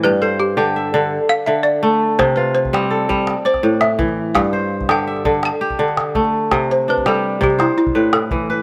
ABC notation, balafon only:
X:1
M:12/8
L:1/8
Q:3/8=111
K:C
V:1 name="Balafon"
B A G2 z3 f e d3 | c B c2 z3 c2 e3 | f3 g3 a3 z3 | z c B A2 G E E2 A2 z |]